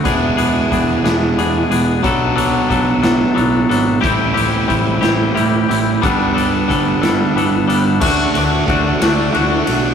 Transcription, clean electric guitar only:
\new Staff \with { instrumentName = "Clean electric guitar" } { \time 6/8 \key d \mixolydian \tempo 4. = 60 <b d' gis'>8 <b d' gis'>8 <b d' gis'>8 <b d' gis'>8 <b d' gis'>8 <b d' gis'>8 | <fis b d' a'>8 <fis b d' a'>8 <fis b d' a'>8 <fis b d' a'>8 <fis b d' a'>8 <fis b d' a'>8 | <g c' e' g'>8 <g c' e' g'>8 <g c' e' g'>8 <g c' e' g'>8 <g c' e' g'>8 <g c' e' g'>8 | <g b d' a'>8 <g b d' a'>8 <g b d' a'>8 <g b d' a'>8 <g b d' a'>8 <g b d' a'>8 |
<a d' fis'>8 <d' fis'>8 <a d' fis'>8 <a d' fis'>8 <a d' fis'>4 | }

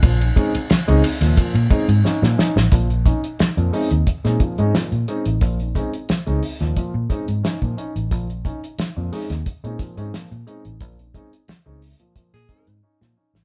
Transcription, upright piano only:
\new Staff \with { instrumentName = "Upright piano" } { \time 4/4 \key bes \minor \tempo 4 = 89 <bes, f>16 <des' ees'>16 <aes c' des' ees'>16 r8 <aes c' des' ees'>16 r16 <bes, f>16 <bes, f>16 r16 <aes c' des' ees'>16 <des' ees'>16 <des' ees'>16 <bes, f>16 <des' ees'>16 r16 | <bes, f>16 r16 <des' ees'>16 r16 <des' ees'>16 <bes, f>16 <aes c' des' ees'>16 r8 <aes c' des' ees'>16 <bes, f>16 <aes c' des' ees'>16 <bes, f>16 r16 <aes c' des' ees'>16 r16 | <bes, f>16 <des' ees'>16 <aes c' des' ees'>16 r8 <aes c' des' ees'>16 r16 <bes, f>16 <bes, f>16 r16 <aes c' des' ees'>16 <des' ees'>16 <des' ees'>16 <bes, f>16 <des' ees'>16 r16 | <bes, f>16 r16 <des' ees'>16 r16 <des' ees'>16 <bes, f>16 <aes c' des' ees'>16 r8 <aes c' des' ees'>16 <bes, f>16 <aes c' des' ees'>16 <bes, f>16 r16 <aes c' des' ees'>16 <des' ees'>16 |
<bes, f>16 <des' ees'>16 <aes c' des' ees'>16 r8 <aes c' des' ees'>16 r16 <bes, f>16 <bes, f>16 r16 <aes c' des' ees'>16 <des' ees'>16 <des' ees'>16 <bes, f>16 <des' ees'>16 r16 | }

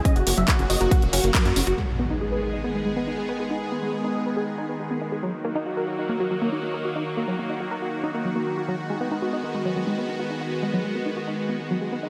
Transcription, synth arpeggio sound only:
\new Staff \with { instrumentName = "Synth arpeggio sound" } { \time 4/4 \key gis \minor \tempo 4 = 139 cis'16 r16 ais16 fis16 ais16 cis'16 fis'16 ais'16 fis'16 r16 cis'16 ais16 fis16 ais16 cis'16 fis'16 | gis16 r16 b16 dis'16 gis'16 b'16 gis'16 dis'16 b16 gis16 gis16 b16 dis'16 gis'16 b'16 gis'16 | dis'16 r16 b16 gis16 b16 dis'16 gis'16 b'16 gis'16 r16 dis'16 b16 gis16 b16 dis'16 gis'16 | fis16 r16 ais16 dis'16 fis'16 ais'16 fis'16 dis'16 ais16 fis16 fis16 ais16 dis'16 fis'16 ais'16 fis'16 |
dis'16 r16 ais16 fis16 ais16 dis'16 fis'16 ais'16 fis'16 r16 dis'16 ais16 fis16 ais16 dis'16 fis'16 | fis16 r16 gis16 b16 dis'16 fis'16 dis'16 b16 gis16 fis16 fis16 gis16 b16 dis'16 fis'16 dis'16 | b16 r16 gis16 fis16 gis16 b16 dis'16 fis'16 dis'16 r16 b16 gis16 fis16 gis16 b16 dis'16 | }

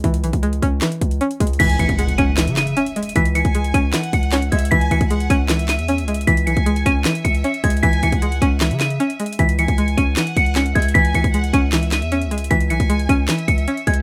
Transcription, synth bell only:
\new Staff \with { instrumentName = "Synth bell" } { \time 4/4 \key cis \minor \tempo 4 = 154 r1 | b'''8 cis''''4 dis''''4 dis''''4. | b'''8 cis''''4 dis''''4 cis''''4 gis'''8 | b'''8 cis''''4 dis''''4 dis''''4. |
b'''8 cis''''4 dis''''4 cis''''4 gis'''8 | b'''8 cis''''4 dis''''4 dis''''4. | b'''8 cis''''4 dis''''4 cis''''4 gis'''8 | b'''8 cis''''4 dis''''4 dis''''4. |
b'''8 cis''''4 dis''''4 cis''''4 gis'''8 | }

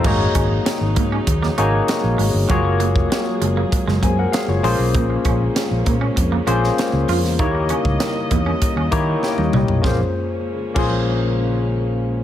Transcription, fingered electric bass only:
\new Staff \with { instrumentName = "Fingered electric bass" } { \clef bass \time 4/4 \key bes \minor \tempo 4 = 98 aes,,8 aes,,8 r16 aes,,16 aes,8 ees,8 aes,,8 r16 bes,,16 aes,,16 g,,16 | ges,,8. f,,16 r8 ges,,8 r16 ges,,16 ges,8 r16 ges,,16 bes,,16 ces,16 | bes,,8 bes,,8 r16 bes,,16 bes,8 f,8 bes,,8 r16 des,16 f,16 e,16 | ees,8. des,16 r8 fes,8 r16 ees,16 ees8 r16 ees,16 c,16 ces,16 |
bes,,16 r4 r16 bes,,2~ bes,,8 | }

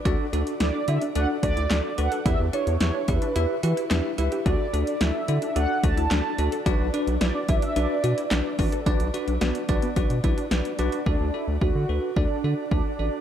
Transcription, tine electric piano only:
\new Staff \with { instrumentName = "Tine electric piano" } { \time 4/4 \key d \major \tempo 4 = 109 <d' fis' a' d''>8 <d' fis' a' d''>8 <d' fis' a' d''>8 <d' fis' a' d''>8 <d' fis' a' d''>8 <d' fis' a' d''>8 <d' fis' a' d''>8 <d' fis' a' b'>8 | <e' g' b' e''>8 <e' g' b' e''>8 <e' g' b' e''>8 <e' g' b' e''>8 <e' g' b' e''>8 <e' g' b' e''>8 <e' g' b' e''>8 <e' g' b' e''>8 | <d' fis' a' d''>8 <d' fis' a' d''>8 <d' fis' a' d''>8 <d' fis' a' d''>8 <d' fis' a' d''>8 <d' fis' a' d''>8 <d' fis' a' d''>8 <d' fis' a' d''>8 | <d' fis' b' d''>8 <d' fis' b' d''>8 <d' fis' b' d''>8 <d' fis' b' d''>8 <d' fis' b' e''>8 <d' fis' b' d''>8 <d' fis' b' d''>8 <d' fis' b' d''>8 |
<d' fis' b' d''>8 <d' fis' b' d''>8 <d' fis' b' d''>8 <d' fis' b' d''>8 <d' fis' b' d''>8 <d' fis' b' d''>8 <d' fis' b' d''>8 <d' fis' b' d''>8 | <d' fis' a' d''>8 <d' fis' a' d''>8 <d' fis' a' d''>8 <d' fis' a' b'>8 <d' fis' a' d''>8 <d' fis' a' d''>8 <d' fis' a' d''>8 <d' fis' a' d''>8 | }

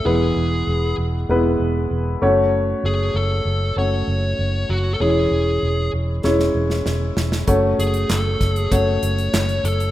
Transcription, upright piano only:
<<
  \new Staff \with { instrumentName = "Upright piano" } { \time 4/4 \key fis \minor \tempo 4 = 97 <gis b e' b'>4.~ <gis b e' b'>16 r16 <gis b e' b'>4. <a cis' fis' cis''>8~ | <a cis' fis' cis''>4~ <a cis' fis' cis''>16 r8. <a cis' fis' cis''>4.~ <a cis' fis' cis''>16 r16 | <gis cis' e' cis''>4.~ <gis cis' e' cis''>16 r16 <gis cis' e' cis''>4.~ <gis cis' e' cis''>16 r16 | <a cis' fis' cis''>4.~ <a cis' fis' cis''>16 r16 <a cis' fis' cis''>4.~ <a cis' fis' cis''>16 r16 | }
  \new Staff \with { instrumentName = "Upright piano" } { \clef bass \time 4/4 \key fis \minor e4. r2 r8 | r1 | e4. r2 r8 | r1 | }
>>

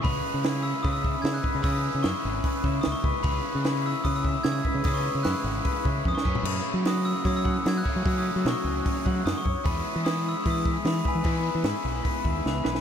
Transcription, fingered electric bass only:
\new Staff \with { instrumentName = "Fingered electric bass" } { \clef bass \time 4/4 \key cis \minor \tempo 4 = 150 cis,8 r16 cis4~ cis16 cis4 cis8 r16 cis16 | cis8. cis16 fis,16 r16 gis,,8 r8 cis8 cis,16 r16 cis,16 r16 | cis,8 r16 cis4~ cis16 cis4 cis8 r16 cis16 | cis8. cis16 fis,16 r16 gis,,8 r8 cis8 f,16 r16 fis,16 r16 |
fis,8 r16 fis4~ fis16 fis4 fis8 r16 fis16 | fis8. fis16 b,16 r16 cis,8 r8 fis8 fis,16 r16 fis,16 r16 | e,8 r16 e4~ e16 e4 e8 r16 e16 | e8. e16 gis,16 r16 b,,8 r8 dis,8 cis,8 b,,8 | }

